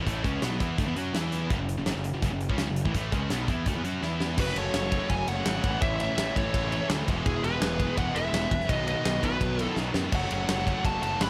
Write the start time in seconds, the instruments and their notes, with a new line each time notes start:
0.06 picked electric bass A1, distorted electric guitar A2 E3 A3, kick, closed hi-hat
0.24 picked electric bass C#2, distorted electric guitar C#3 G#3 C#4, kick, closed hi-hat
0.42 picked electric bass B1, distorted electric guitar B2 F#3 B3, snare, closed hi-hat
0.60 picked electric bass E2, distorted electric guitar E3 B3 E4, kick, closed hi-hat
0.78 picked electric bass D2, distorted electric guitar D3 A3, kick, closed hi-hat
0.87 picked electric bass E2, distorted electric guitar E3 B3
0.96 picked electric bass F#2, distorted electric guitar F#3 C#4 F#4, closed hi-hat
1.14 picked electric bass E2, distorted electric guitar E3 B3 E4, snare, closed hi-hat
1.32 closed hi-hat
1.50 picked electric bass F#1, distorted electric guitar F#2 C#3, kick, closed hi-hat
1.59 picked electric bass F#1, distorted electric guitar F#2 C#3
1.69 closed hi-hat
1.78 picked electric bass F#1, distorted electric guitar F#2 C#3
1.86 picked electric bass G#1, distorted electric guitar G#2 D#3, snare, closed hi-hat
1.95 picked electric bass F#1, distorted electric guitar F#2 C#3
2.04 closed hi-hat
2.13 picked electric bass F#1, distorted electric guitar F#2 C#3
2.22 picked electric bass F#1, distorted electric guitar F#2 C#3, kick, closed hi-hat
2.31 picked electric bass F#1, distorted electric guitar F#2 C#3
2.41 closed hi-hat
2.49 picked electric bass C#2, distorted electric guitar C#3 G#3 C#4, kick
2.58 snare, closed hi-hat
2.67 picked electric bass F#1, distorted electric guitar F#2 C#3
2.76 closed hi-hat
2.85 picked electric bass A1, distorted electric guitar A2 E3, kick
2.94 picked electric bass A1, distorted electric guitar A2 E3 A3, kick, closed hi-hat
3.12 picked electric bass C#2, distorted electric guitar C#3 G#3 C#4, kick, closed hi-hat
3.30 picked electric bass B1, distorted electric guitar B2 F#3 B3, snare, closed hi-hat
3.48 picked electric bass E2, distorted electric guitar E3 B3 E4, kick, closed hi-hat
3.66 picked electric bass D2, distorted electric guitar D3 A3, kick, closed hi-hat
3.75 picked electric bass E2, distorted electric guitar E3 B3
3.84 picked electric bass F#2, distorted electric guitar F#3 C#4 F#4, closed hi-hat
4.01 picked electric bass E2, distorted electric guitar E3 B3 E4, snare
4.20 snare
4.37 picked electric bass F#1, distorted electric guitar F#2 C#3 F#3 A3 C#4 F#4, lead electric guitar F#4 B4, kick, crash
4.45 distorted electric guitar F#2 C#3
4.53 picked electric bass F#1, distorted electric guitar F#2 C#3, ride
4.58 distorted electric guitar F#2 C#3, lead electric guitar A4 C#5
4.69 distorted electric guitar F#2 C#3
4.74 picked electric bass F#1, distorted electric guitar F#2 C#3, snare, ride
4.84 distorted electric guitar F#2 C#3
4.91 distorted electric guitar F#2 C#3 F#3, kick, ride
5.00 distorted electric guitar F#2 C#3
5.09 picked electric bass F#1, distorted electric guitar F#2 C#3, lead electric guitar C#5 G#5, kick, ride
5.16 distorted electric guitar F#2 C#3
5.24 distorted electric guitar F#2 C#3, ride
5.28 picked electric bass F#1, distorted electric guitar F#2 C#3 F#3 A3 C#4 F#4, lead electric guitar C#5 F#5
5.39 distorted electric guitar F#2 C#3
5.46 picked electric bass G#1, distorted electric guitar F#2 C#3 F#3 A3 C#4 F#4, snare, ride
5.55 distorted electric guitar F#2 C#3
5.63 picked electric bass A1, distorted electric guitar A2 E3 A3 C#4 E4, kick, ride
5.70 distorted electric guitar A2 E3
5.78 picked electric bass A1, distorted electric guitar A2 E3, lead electric guitar E5, kick, ride
5.83 distorted electric guitar A2, lead electric guitar C#5
5.88 distorted electric guitar E3
5.94 distorted electric guitar A2 E3
6.00 distorted electric guitar A2, lead electric guitar C#5 E5, ride
6.04 distorted electric guitar E3
6.09 distorted electric guitar A2 E3
6.16 picked electric bass A1, distorted electric guitar A2 E3, snare, ride
6.20 distorted electric guitar A2 A3
6.28 distorted electric guitar A2 E3
6.36 picked electric bass A1, distorted electric guitar A2 E3, lead electric guitar A4 C#5, kick, ride
6.45 distorted electric guitar A2 E3
6.52 picked electric bass A1, distorted electric guitar A2 E3 A3 C#4 E4, kick, ride
6.59 distorted electric guitar A2 E3
6.67 distorted electric guitar A2 E3
6.71 distorted electric guitar E3 A3 C#4 E4, ride
6.77 distorted electric guitar A2
6.83 distorted electric guitar A2 E3
6.90 picked electric bass D2, distorted electric guitar A2 E3, snare, ride
6.98 distorted electric guitar A2 E3
7.07 picked electric bass E1, distorted electric guitar E2 B2 E3 G#3 B3 E4, kick, ride
7.15 distorted electric guitar E3 G#3
7.23 picked electric bass E1, distorted electric guitar E3 G#3, lead electric guitar G#4, kick, ride
7.27 distorted electric guitar E3 G#3, lead electric guitar E4
7.38 distorted electric guitar E3 G#3
7.44 picked electric bass E1, distorted electric guitar E3 G#3, lead electric guitar G#4 B4, ride
7.54 distorted electric guitar E3 G#3
7.61 picked electric bass E1, distorted electric guitar E2 B2 E3 G#3, snare, ride
7.68 distorted electric guitar E3 G#3
7.76 distorted electric guitar E3 G#3, kick, ride
7.84 distorted electric guitar E3 G#3
7.92 distorted electric guitar E3 G#3
7.97 picked electric bass E1, distorted electric guitar E3 G#3 B3 E4, lead electric guitar B4 F#5, kick, ride
8.06 distorted electric guitar E3 G#3
8.13 picked electric bass E1, distorted electric guitar B2 E3 G#3 B3 E4, lead electric guitar B4 E5, ride
8.18 distorted electric guitar E2 E3
8.22 distorted electric guitar G#3
8.29 distorted electric guitar E3 G#3
8.33 picked electric bass E1, distorted electric guitar E3 G#3, snare, ride
8.44 distorted electric guitar E3 G#3
8.51 picked electric bass E1, kick, ride
8.60 snare
8.69 picked electric bass B1, distorted electric guitar B2 D#3 F#3 B3 F#4, lead electric guitar B4 D#5, kick, ride
8.77 distorted electric guitar B2 D#3
8.85 distorted electric guitar B2 D#3, lead electric guitar D#5, ride
8.89 distorted electric guitar B2, lead electric guitar B4
8.93 distorted electric guitar D#3
9.00 distorted electric guitar B2 D#3
9.05 picked electric bass B1, distorted electric guitar B2 D#3, snare, ride
9.15 distorted electric guitar B2 D#3
9.22 picked electric bass B1, distorted electric guitar B2 D#3 F#3 B3, lead electric guitar F#4 B4, kick, ride
9.29 distorted electric guitar B2 D#3
9.36 distorted electric guitar B2 D#3
9.41 picked electric bass B1, distorted electric guitar B2, kick, ride
9.46 distorted electric guitar D#3
9.52 distorted electric guitar B2 D#3
9.58 distorted electric guitar B2 F#3 B3 F#4, ride
9.62 distorted electric guitar D#3
9.68 distorted electric guitar B2 D#3
9.75 picked electric bass B1, distorted electric guitar B2 D#3 F#3 B3 F#4, snare
9.83 distorted electric guitar B2 D#3
9.91 distorted electric guitar B2 D#3, snare
9.95 picked electric bass F#2, distorted electric guitar B2 D#3
10.06 distorted electric guitar B2 D#3
10.12 picked electric bass F#1, distorted electric guitar F#2 C#3 F#3 A3 C#4 F#4, lead electric guitar C#5 F#5, kick, crash
10.21 distorted electric guitar F#3 A3
10.29 picked electric bass F#1, distorted electric guitar F#3 A3, lead electric guitar C#5, ride
10.33 distorted electric guitar F#3 A3, lead electric guitar F#5
10.44 distorted electric guitar F#3 A3
10.49 picked electric bass F#1, distorted electric guitar A3, snare, ride
10.53 distorted electric guitar F#3
10.59 distorted electric guitar F#3 A3, snare
10.67 distorted electric guitar F#2 C#3 F#3 A3, kick, ride
10.75 distorted electric guitar F#3 A3
10.83 picked electric bass F#1, distorted electric guitar F#3 A3, lead electric guitar F#5 A5, kick, ride
10.92 distorted electric guitar F#3 A3
10.99 picked electric bass F#1, distorted electric guitar F#3 A3 C#4 F#4, lead electric guitar A5
11.03 lead electric guitar F#5, ride
11.07 distorted electric guitar F#3 A3
11.15 distorted electric guitar F#3 A3
11.19 picked electric bass G#1, distorted electric guitar F#2 C#3 F#3 A3 C#4 F#4, lead electric guitar F#5 B5, snare, ride